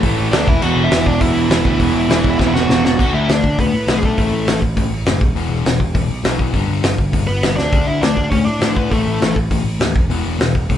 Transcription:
Already playing: distorted electric guitar A2 E3 A3
0.02 picked electric bass A1, distorted electric guitar A2 E3 A3, kick, open hi-hat
0.17 picked electric bass A1, distorted electric guitar A2 E3 A3
0.32 picked electric bass D2, distorted electric guitar A2 E3 A3, lead electric guitar D4 D5, snare, open hi-hat
0.47 picked electric bass E1, distorted electric guitar E2 B2 E3, lead electric guitar E4 E5, kick
0.62 picked electric bass E1, distorted electric guitar E2 B2 E3, lead electric guitar F#4 F#5, crash
0.77 picked electric bass E1
0.84 lead electric guitar E4 E5
0.91 picked electric bass E1, distorted electric guitar E2 B2 E3, snare, open hi-hat
1.05 picked electric bass E1, lead electric guitar D4 D5, kick
1.21 picked electric bass E1, distorted electric guitar E2 B2 E3, lead electric guitar E4 E5, kick, open hi-hat
1.34 picked electric bass E1, distorted electric guitar B2 E3
1.39 distorted electric guitar E2
1.50 picked electric bass E1, distorted electric guitar E2 B2 E3, snare, open hi-hat
1.64 picked electric bass D2, distorted electric guitar E2 B2 E3, kick
1.80 picked electric bass E1, distorted electric guitar E2 B2 E3, kick, open hi-hat
1.95 picked electric bass E1
2.08 picked electric bass E1, distorted electric guitar E2 B2 E3, snare, open hi-hat
2.24 picked electric bass E1, kick
2.39 picked electric bass E1, distorted electric guitar E2 B2 E3, kick, snare
2.54 picked electric bass E1, distorted electric guitar E2 B2 E3, lead electric guitar F#4 F#5, snare
2.69 picked electric bass E1, distorted electric guitar E2 B2 E3, snare
2.84 picked electric bass E1, lead electric guitar F#4 F#5, snare
2.97 picked electric bass D2, distorted electric guitar D3 A3 D4, kick, crash
3.13 picked electric bass D2, lead electric guitar E4 E5
3.28 picked electric bass D2, distorted electric guitar D3 A3, lead electric guitar D4 D5, snare, open hi-hat
3.44 picked electric bass D2, kick
3.58 picked electric bass D2, distorted electric guitar D3 A3, lead electric guitar B3 B4, kick, open hi-hat
3.73 picked electric bass A2
3.87 picked electric bass B1, distorted electric guitar D3 A3 D4, snare, open hi-hat
3.97 lead electric guitar G#4
4.03 lead electric guitar A3 A4, kick
4.17 picked electric bass A1, distorted electric guitar A2 E3 A3, kick, open hi-hat
4.32 picked electric bass A1
4.47 picked electric bass A1, distorted electric guitar A2 E3, snare, open hi-hat
4.62 picked electric bass A1, kick
4.77 picked electric bass A1, distorted electric guitar A2 E3, kick, open hi-hat
4.91 picked electric bass A1
5.06 picked electric bass F#1, distorted electric guitar A2 E3, snare, open hi-hat
5.21 picked electric bass E1, kick
5.35 picked electric bass E1, distorted electric guitar E2 B2 E3, open hi-hat
5.50 picked electric bass E1
5.65 picked electric bass E1, distorted electric guitar E2 B2, snare, open hi-hat
5.80 picked electric bass E1, kick
5.94 picked electric bass E1, distorted electric guitar E2 B2, kick, open hi-hat
6.10 picked electric bass B1
6.23 picked electric bass B1, distorted electric guitar E2 B2 E3, snare, open hi-hat
6.39 kick
6.54 picked electric bass G1, distorted electric guitar G2 D3 G3, kick, open hi-hat
6.69 picked electric bass G1
6.83 picked electric bass G1, distorted electric guitar G2 D3, snare, open hi-hat
6.98 picked electric bass G1, kick
7.12 picked electric bass G1, distorted electric guitar G2 D3, kick, open hi-hat
7.27 picked electric bass G1, lead electric guitar B3 B4
7.43 picked electric bass G1, distorted electric guitar G2 D3, snare, open hi-hat
7.56 picked electric bass D2, lead electric guitar D4 D5, snare
7.72 picked electric bass D2, distorted electric guitar D3 A3 D4, kick, open hi-hat
7.87 picked electric bass D2, lead electric guitar E4 E5
8.01 picked electric bass D2, distorted electric guitar D3 A3, lead electric guitar D4 D5, snare, open hi-hat
8.17 picked electric bass D2, kick
8.30 picked electric bass D2, distorted electric guitar D3 A3, lead electric guitar C#4 C#5, kick, open hi-hat
8.45 picked electric bass A2, lead electric guitar D4 D5
8.60 picked electric bass A2, distorted electric guitar D3 A3 D4, snare, open hi-hat
8.77 lead electric guitar B3 B4, kick
8.90 picked electric bass A1, distorted electric guitar A2 E3 A3, lead electric guitar A3 A4, kick, open hi-hat
9.07 picked electric bass A1
9.21 picked electric bass A1, distorted electric guitar A2 E3, snare, open hi-hat
9.36 picked electric bass A1, kick
9.51 picked electric bass A1, distorted electric guitar A2 E3, kick, open hi-hat
9.64 picked electric bass A1
9.79 picked electric bass D#2, distorted electric guitar A2 E3, snare, open hi-hat
9.96 picked electric bass E1, kick
10.09 picked electric bass E1, distorted electric guitar E2 B2 E3, open hi-hat
10.25 picked electric bass E1
10.39 picked electric bass E1, distorted electric guitar E2 B2, snare, open hi-hat
10.55 picked electric bass E1, kick
10.69 picked electric bass E1, distorted electric guitar E2 B2, kick, open hi-hat

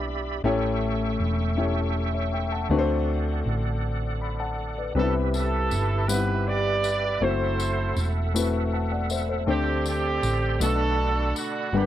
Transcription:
Already playing: fingered electric bass B1, grand piano E3 B3 D4 E4 G4 D5, tonewheel organ G4 D5 E5 B5
0.44 fingered electric bass A1, grand piano A2 A3 C#4 E4 G4 C#5, tonewheel organ A4 E5 G5 C#6
1.19 fingered electric bass E1
1.57 grand piano A3 C#4 E4 G4 C#5
2.14 grand piano C#5 E5
2.34 grand piano E5 G5
2.52 grand piano F#5 A5
2.69 fingered electric bass D2, grand piano D3 A3 C4 D4 F#4 B4, tonewheel organ D5 F#5
2.79 grand piano C5
3.46 fingered electric bass A1
4.22 grand piano B5
4.40 grand piano F#5 A5
4.78 grand piano B4 D5
4.95 fingered electric bass C2, grand piano C3 G3 B3 C4 D4 B4, tonewheel organ G4 B4 E5, horn section A4
4.99 horn section E4, grand piano E4
5.34 horn section E4 A4, tambourine
5.71 fingered electric bass G1, tambourine
6.08 grand piano G3 B3 C4 D#4 F#5, horn section B4, tambourine
6.16 grand piano E4
6.47 horn section G4 B4 D5
6.84 tambourine
7.21 fingered electric bass F#1, grand piano A3 C4 E4 F#4 C5, horn section E4 A4 C5, tonewheel organ A4 F#5
7.60 tambourine
7.96 fingered electric bass E1, tambourine
8.34 grand piano A3 C4 E4 F#4 B4, tambourine
8.73 grand piano F#5 A5
8.92 grand piano D5 F#5
9.10 grand piano C5 E5, tambourine
9.29 grand piano A4 C5
9.46 fingered electric bass D2, grand piano D3 A3 C4 D4 G4 C5, horn section C4, tonewheel organ D5 G5 C6
9.51 horn section G4
9.86 horn section C4 G4, tambourine
10.23 fingered electric bass A1, tambourine
10.58 fingered electric bass B1, grand piano B2 A3 B3 D4 F#4 B4, horn section D4 F#4, tonewheel organ D5 F#5 B5, tambourine
10.63 horn section A4
11.36 horn section F#4, tambourine
11.73 fingered electric bass G1, grand piano G2 G3 B3 D4 A#4 F#5, tonewheel organ G3, horn section B3 D4
11.77 horn section G4
11.82 grand piano B4

